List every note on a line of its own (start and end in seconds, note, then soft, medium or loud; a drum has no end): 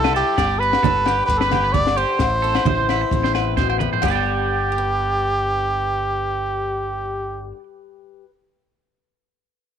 0.00 0.21 C2 loud
0.00 0.35 G2 medium
0.00 0.35 E3 medium
0.00 0.15 G3 medium
0.00 0.36 E4 medium
0.00 0.14 A4 medium
0.00 0.34 E5 medium
0.00 0.35 G5 medium
0.00 0.35 C6 medium
0.04 0.14 B4 medium
0.04 snare medium
0.04 low agogo medium
0.14 2.20 G3 medium
0.14 0.61 G4 medium
0.14 0.36 A4 medium
0.38 0.75 G1 medium
0.38 2.18 G2 medium
0.38 0.61 D4 medium
0.38 0.59 D5 medium
0.38 kick medium
0.38 snare medium
0.38 muted conga soft
0.38 low agogo medium
0.59 1.29 D4 medium
0.59 1.25 B4 loud
0.59 0.82 B4 medium
0.73 snare medium
0.73 low agogo medium
0.83 1.21 G1 medium
0.83 1.28 D3 medium
0.83 1.04 A4 medium
0.83 kick medium
0.83 muted conga soft
0.83 high conga loud
1.06 1.28 G4 medium
1.06 1.96 G4 medium
1.06 snare medium
1.06 low agogo medium
1.26 2.04 G1 medium
1.26 1.73 D3 medium
1.26 1.38 B4 medium
1.26 kick medium
1.26 muted conga soft
1.30 2.18 D4 medium
1.37 1.41 A4 medium
1.37 1.74 B4 medium
1.37 snare medium
1.41 1.51 B4 medium
1.51 1.63 G4 medium
1.51 snare medium
1.51 muted conga soft
1.51 high conga medium
1.51 low agogo medium
1.64 1.85 B4 medium
1.73 2.20 D3 medium
1.73 1.99 D5 loud
1.73 kick medium
1.73 high conga medium
1.87 snare medium
1.87 low agogo medium
1.97 2.18 G4 medium
1.97 2.17 G4 medium
1.97 3.57 C5 medium
2.19 2.57 A1 medium
2.19 3.11 A2 medium
2.19 2.89 E4 medium
2.19 kick medium
2.19 snare medium
2.19 muted conga soft
2.19 low agogo medium
2.42 3.12 C4 medium
2.42 2.54 A4 medium
2.55 2.65 B4 medium
2.55 snare medium
2.55 low agogo medium
2.65 3.03 A1 medium
2.65 4.01 E3 medium
2.65 2.88 C5 medium
2.65 kick medium
2.65 muted conga soft
2.65 high conga medium
2.89 4.04 E4 medium
2.89 3.01 B4 medium
2.89 snare medium
2.89 low agogo medium
3.01 muted clean electric guitar stroke medium
3.11 3.87 A1 medium
3.11 4.03 E2 medium
3.11 4.01 C4 medium
3.11 kick medium
3.11 muted conga soft
3.11 high conga medium
3.24 3.34 C5 medium
3.24 snare medium
3.35 3.56 B4 medium
3.35 snare medium
3.35 muted conga soft
3.35 low agogo medium
3.57 3.80 B2 medium
3.57 3.68 C5 medium
3.57 kick medium
3.57 snare soft
3.57 high conga medium
3.70 3.79 C5 medium
3.70 low agogo medium
3.79 4.03 A2 medium
3.79 3.91 B4 medium
3.79 mid tom medium
3.79 low conga medium
3.93 4.02 C5 medium
3.93 floor tom medium
4.02 7.51 G1 medium
4.02 7.56 G2 soft
4.02 7.57 D3 soft
4.02 7.51 G4 medium
4.02 7.52 G4 medium
4.02 kick medium
4.02 crash medium
4.02 muted conga medium
4.02 low agogo medium
4.07 4.71 B3 medium
4.07 4.78 D4 soft
4.07 4.15 B4 medium
4.11 4.72 G4 soft
4.11 7.59 D5 medium
4.15 7.63 G5 medium
4.72 8.24 G4 medium
4.78 8.30 B4 medium